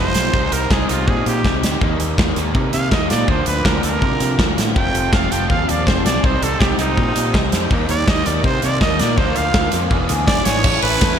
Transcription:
Already playing: fingered electric bass F1, overdriven electric guitar F2 C3 F3 A3 C4 F4
0.00 trumpet C5
0.15 fingered electric bass B1, snare, closed hi-hat
0.32 fingered electric bass C2, overdriven electric guitar C3 G3 C4 D#4, kick
0.52 fingered electric bass C2, trumpet A#4, closed hi-hat
0.70 fingered electric bass C2, trumpet G#4, kick, snare
0.87 fingered electric bass C2, overdriven electric guitar C3 G3 C4 D#4, trumpet F4, closed hi-hat
1.07 fingered electric bass A#2, trumpet G#4, kick
1.26 fingered electric bass A#2, trumpet G4, closed hi-hat
1.44 fingered electric bass C2, kick, snare
1.63 fingered electric bass D2, snare, closed hi-hat
1.80 fingered electric bass D#2, overdriven electric guitar D#3 G3 A#3 D#4, kick
1.99 fingered electric bass D#2, closed hi-hat
2.18 fingered electric bass D#2, kick, snare
2.36 fingered electric bass D#2, overdriven electric guitar G3 A#3 D#4, closed hi-hat
2.40 overdriven electric guitar D#3
2.55 fingered electric bass C3, kick
2.73 fingered electric bass C3, trumpet F5, closed hi-hat
2.91 fingered electric bass D#2, trumpet D#5, kick, snare
3.10 fingered electric bass A#2, trumpet D5, snare, closed hi-hat
3.28 fingered electric bass D2, overdriven electric guitar D3 F3 A#3 D4, trumpet C5, kick
3.46 fingered electric bass D2, trumpet B4, closed hi-hat
3.65 fingered electric bass D2, trumpet A#4, kick, snare
3.83 fingered electric bass D2, overdriven electric guitar D3 F3 A#3 D4, trumpet A#4, closed hi-hat
4.02 fingered electric bass C3, kick
4.20 fingered electric bass C3, closed hi-hat
4.38 fingered electric bass D2, kick, snare
4.57 fingered electric bass A2, snare, closed hi-hat
4.75 fingered electric bass F1, overdriven electric guitar F2 C3 F3 A3 C4, string machine F4 C5 A5, trumpet G5, kick
4.94 fingered electric bass F1, closed hi-hat
5.13 fingered electric bass F1, trumpet F5, kick, snare
5.30 fingered electric bass F1, overdriven electric guitar F2 C3 F3 A3 C4, trumpet G5, closed hi-hat
5.50 fingered electric bass D#2, trumpet F5, kick
5.69 fingered electric bass D#2, trumpet D5, closed hi-hat
5.87 fingered electric bass F1, trumpet C5, kick, snare
6.05 fingered electric bass B1, trumpet D5, snare, closed hi-hat
6.22 fingered electric bass C2, overdriven electric guitar C3 G3 C4, string machine D#4 G5, trumpet C5, kick
6.26 overdriven electric guitar D#4
6.42 fingered electric bass C2, trumpet A4, closed hi-hat
6.60 fingered electric bass C2, trumpet G4, kick, snare
6.78 fingered electric bass C2, overdriven electric guitar C3 G3 C4 D#4, trumpet D#4, closed hi-hat
6.97 fingered electric bass A#2, kick
7.16 fingered electric bass A#2, closed hi-hat
7.34 fingered electric bass C2, kick, snare
7.52 fingered electric bass F2, snare, closed hi-hat
7.70 fingered electric bass D#2, overdriven electric guitar D#3 G3 A#3 D#4, string machine A#4, kick
7.89 fingered electric bass D#2, trumpet D5, closed hi-hat
8.08 fingered electric bass D#2, trumpet D#5, kick, snare
8.25 fingered electric bass D#2, overdriven electric guitar D#3 G3 A#3 D#4, trumpet D5, closed hi-hat
8.44 fingered electric bass C3, trumpet C5, kick
8.62 fingered electric bass C3, trumpet D5, closed hi-hat
8.81 fingered electric bass D#2, trumpet D#5, kick, snare
8.99 fingered electric bass A#2, trumpet D5, snare, closed hi-hat
9.17 fingered electric bass D2, overdriven electric guitar D3 F3 A#3 F4, string machine D4 F5, trumpet C5, kick
9.36 fingered electric bass D2, trumpet F5, closed hi-hat
9.54 fingered electric bass D2, kick, snare
9.72 fingered electric bass F2, overdriven electric guitar D3 F3 A#3 F4, closed hi-hat
9.90 fingered electric bass E1, overdriven electric guitar E3 B3 D4 G#4, string machine G#4 E5, kick
10.09 fingered electric bass D2, closed hi-hat
10.27 fingered electric bass E1, trumpet D5, kick, snare
10.45 fingered electric bass G#1, overdriven electric guitar B3 D4 G#4, trumpet C#5, snare, closed hi-hat
10.49 overdriven electric guitar E3
10.63 fingered electric bass A1, overdriven electric guitar A3 C#4 E4 C#5, string machine A4 G#5 C#6, kick, crash
10.67 overdriven electric guitar A4
10.82 fingered electric bass A1, overdriven electric guitar A3 C#4 E4 A4 C#5, trumpet B4, ride
11.00 fingered electric bass E2, overdriven electric guitar A3 C#4 E4 A4 C#5, kick, snare, ride

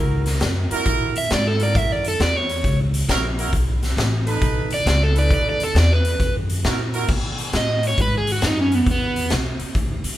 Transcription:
Already playing: upright bass C#2, horn section E4 F#4 A#4, overdriven electric guitar A#4
0.26 snare, closed hi-hat
0.41 upright bass F#2, snare, closed hi-hat
0.70 horn section E4 F#4 A#4, muted upright bass stroke, closed hi-hat
0.86 upright bass A#2, kick, closed hi-hat
1.16 overdriven electric guitar E5, closed hi-hat
1.30 upright bass G#2, overdriven electric guitar D5, snare, closed hi-hat
1.47 overdriven electric guitar A4
1.59 horn section E4 F#4 A#4, overdriven electric guitar D5, closed hi-hat
1.75 upright bass F#2, overdriven electric guitar E5, kick, closed hi-hat
1.92 overdriven electric guitar D5
2.04 overdriven electric guitar A4, closed hi-hat
2.20 upright bass E2, overdriven electric guitar D5, snare, closed hi-hat
2.36 overdriven electric guitar C#5
2.49 closed hi-hat
2.64 upright bass C#2, kick, closed hi-hat
2.94 closed hi-hat
3.08 upright bass A#1, horn section E4 F#4 A#4, snare, closed hi-hat
3.37 horn section E4 F#4 A#4, closed hi-hat
3.53 upright bass B1, kick, closed hi-hat
3.83 snare, closed hi-hat
3.97 upright bass A1, snare, closed hi-hat
4.26 horn section D#4 A4 B4, closed hi-hat
4.42 upright bass B1, kick, closed hi-hat
4.70 overdriven electric guitar D5, closed hi-hat
4.86 upright bass C#2, overdriven electric guitar D5, snare, closed hi-hat
5.03 overdriven electric guitar A4
5.14 horn section D#4 A4 B4, closed hi-hat
5.19 overdriven electric guitar D5
5.31 upright bass D#2, overdriven electric guitar D5, kick, closed hi-hat
5.49 overdriven electric guitar D5
5.60 overdriven electric guitar A4, closed hi-hat
5.75 upright bass E2, snare, closed hi-hat
5.79 overdriven electric guitar D5
5.93 overdriven electric guitar B4
6.05 closed hi-hat
6.20 upright bass F#2, kick, closed hi-hat
6.50 closed hi-hat
6.64 upright bass A#2, horn section E4 F#4 A#4, snare, closed hi-hat
6.93 horn section E4 F#4 A#4, closed hi-hat
7.08 upright bass B2, kick, crash
7.38 closed hi-hat
7.53 upright bass A2, overdriven electric guitar D#5, snare, closed hi-hat
7.83 closed hi-hat
7.88 overdriven electric guitar C#5
7.98 upright bass G#2, overdriven electric guitar B4, kick, closed hi-hat
8.18 overdriven electric guitar G#4
8.27 closed hi-hat
8.32 overdriven electric guitar F#4
8.42 upright bass F#2, snare, closed hi-hat
8.46 overdriven electric guitar D#4
8.61 overdriven electric guitar C#4
8.72 overdriven electric guitar B3, closed hi-hat
8.86 upright bass E2, kick, closed hi-hat
8.91 overdriven electric guitar B3
9.16 closed hi-hat
9.30 upright bass B1, snare, closed hi-hat
9.60 muted upright bass stroke, closed hi-hat
9.75 upright bass D2, kick, closed hi-hat
10.04 muted upright bass stroke, closed hi-hat

